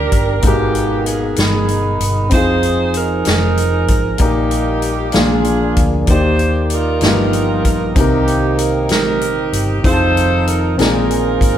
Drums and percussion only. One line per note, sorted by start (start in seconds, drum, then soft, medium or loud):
0.12 kick medium
0.12 closed hi-hat soft
0.42 kick medium
0.42 closed hi-hat medium
0.75 closed hi-hat soft
1.06 closed hi-hat soft
1.36 snare medium
1.36 closed hi-hat soft
1.68 closed hi-hat soft
2.00 closed hi-hat soft
2.31 kick medium
2.31 closed hi-hat medium
2.63 closed hi-hat soft
2.94 closed hi-hat soft
3.25 snare medium
3.25 closed hi-hat medium
3.57 closed hi-hat soft
3.88 kick medium
3.88 closed hi-hat medium
4.18 kick medium
4.18 closed hi-hat medium
4.51 closed hi-hat soft
4.82 closed hi-hat soft
5.12 snare medium
5.12 closed hi-hat soft
5.44 closed hi-hat soft
5.76 kick medium
5.76 closed hi-hat medium
6.07 kick medium
6.07 closed hi-hat medium
6.39 closed hi-hat soft
6.70 closed hi-hat soft
7.01 snare medium
7.01 closed hi-hat medium
7.33 closed hi-hat soft
7.65 kick medium
7.65 closed hi-hat medium
7.96 kick medium
7.96 closed hi-hat medium
8.27 closed hi-hat soft
8.58 closed hi-hat soft
8.89 snare medium
8.89 closed hi-hat soft
9.21 closed hi-hat soft
9.53 closed hi-hat medium
9.84 kick medium
9.84 closed hi-hat medium
10.17 closed hi-hat soft
10.47 closed hi-hat soft
10.79 snare medium
10.79 closed hi-hat soft
11.11 closed hi-hat soft
11.41 kick medium
11.41 closed hi-hat medium